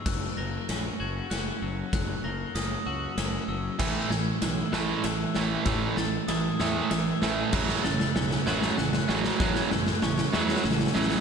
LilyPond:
<<
  \new Staff \with { instrumentName = "Glockenspiel" } { \time 3/4 \key fis \dorian \tempo 4 = 96 fis'''8 ais'''4 gis'''8 fis'''4 | fis'''8 ais'''8 dis'''8 e'''4 e'''8 | e'''8 gis'''4 fis'''8 e'''4 | e'''8 a'''8 dis'''8 e'''4 e'''8 |
fis'''8 a'''4 gis'''8 fis'''4 | fis'''8 gis'''8 cis'''8 e'''4 e'''8 | }
  \new Staff \with { instrumentName = "Clean electric guitar" } { \time 3/4 \key fis \dorian fis,8 ais8 cis'8 fis'8 cis'8 fis8 | fis,8 ais8 cis'8 fis'8 cis'8 fis8 | a,8 a8 e'8 a'8 e'8 e8 | a,8 a8 e'8 a'8 e'8 e8 |
fis,8 a8 cis'8 fis'8 cis'8 fis8 | fis,8 a8 cis'8 fis'8 cis'8 fis8 | }
  \new Staff \with { instrumentName = "Distorted electric guitar" } { \clef bass \time 3/4 \key fis \dorian r2. | r2. | <a, e a>8 <a, e>8 <a, e>8 <a, e a>8 <a, e>8 <a, e a>8 | <a, e a>8 <a, e>8 <a, e>8 <a, e a>8 <a, e>8 <a, e a>8 |
<fis, cis fis>8 <fis, cis>8 <fis, cis>8 <fis, cis fis>8 <fis, cis>8 <fis, cis fis>8 | <fis, cis fis>8 <fis, cis>8 <fis, cis>8 <fis, cis fis>8 <fis, cis>8 <fis, cis fis>8 | }
  \new Staff \with { instrumentName = "Fingered electric bass" } { \clef bass \time 3/4 \key fis \dorian fis,,8 fis,,8 ais,,8 fis,,8 fis,,8 fis,,8 | fis,,8 fis,,8 fis,,8 cis,8 fis,,8 fis,,8 | a,,8 a,,8 b,,8 a,,8 a,,8 a,,8 | a,,8 a,,8 a,,8 e,8 a,,8 a,,8 |
a,,8 a,,8 b,,8 a,,8 a,,8 a,,8 | a,,8 a,,8 a,,8 e,8 a,,8 a,,8 | }
  \new DrumStaff \with { instrumentName = "Drums" } \drummode { \time 3/4 <cymc bd sn>4 <cymr sn>4 <cymr sn>4 | <bd cymr sn>4 <cymr sn>4 <cymr sn>4 | <cymc bd sn>8 sn8 <cymr sn>8 sn8 <cymr sn>8 sn8 | <bd cymr sn>8 sn8 <cymr sn>8 sn8 <cymr sn>8 sn8 |
<cymc bd sn>16 sn16 sn16 sn16 sn16 sn16 sn16 sn16 sn16 sn16 sn16 sn16 | <bd sn>16 sn16 sn16 sn16 sn16 sn16 sn16 sn32 sn32 sn32 sn32 sn32 sn32 sn32 sn32 sn16 | }
>>